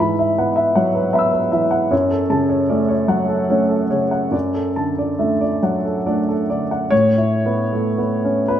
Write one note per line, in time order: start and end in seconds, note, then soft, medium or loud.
0.00 1.88 G#2 medium
0.00 0.62 E3 soft
0.00 0.12 B4 soft
0.00 0.19 E5 soft
0.00 0.31 B5 soft
0.19 0.50 E5 soft
0.38 0.73 B3 soft
0.38 0.58 F#5 soft
0.56 0.88 E5 soft
0.75 1.38 F#3 soft
0.75 1.07 F#5 medium
0.95 1.26 B4 soft
1.13 1.49 B3 soft
1.13 1.45 E5 medium
1.13 1.69 F#5 soft
1.13 1.88 B5 soft
1.19 1.89 E6 soft
1.32 1.64 B4 soft
1.52 1.91 E3 soft
1.52 1.83 E5 medium
1.71 1.91 F#5 soft
1.91 4.29 F#2 medium
1.91 2.22 C#5 soft
2.11 2.42 A4 soft
2.30 2.92 C#3 soft
2.30 2.61 A5 medium
2.49 2.81 C#5 soft
2.69 3.05 A3 soft
2.69 3.05 C#4 soft
2.69 2.89 D5 soft
2.89 3.21 C#5 soft
3.08 3.73 F#3 soft
3.08 3.41 F#5 soft
3.28 3.61 A4 soft
3.49 3.87 A3 soft
3.49 3.87 C#4 soft
3.49 3.83 C#5 soft
3.69 4.03 A4 soft
3.91 4.34 C#3 soft
3.91 4.25 C#5 soft
4.11 4.33 F#5 soft
4.31 6.86 F#2 soft
4.31 4.67 D5 soft
4.55 4.90 A4 soft
4.76 5.46 D3 soft
4.76 5.11 A5 soft
4.98 5.33 D5 soft
5.19 5.59 A3 soft
5.19 5.59 D4 soft
5.19 5.41 E5 soft
5.41 5.76 D5 soft
5.62 6.32 F#3 soft
5.62 5.98 F#5 soft
5.85 6.20 A4 soft
6.06 6.46 A3 soft
6.06 6.46 D4 soft
6.06 6.41 D5 soft
6.29 6.63 A4 soft
6.50 6.91 D3 soft
6.50 6.83 D5 soft
6.71 6.91 F#5 soft
6.90 8.60 A2 medium
6.90 8.51 C#5 medium
7.18 7.61 E4 soft
7.46 7.88 B3 soft
7.73 7.99 A3 soft
7.98 8.41 B3 soft
8.24 8.51 C#4 soft
8.48 8.60 B3 soft
8.48 8.60 B4 medium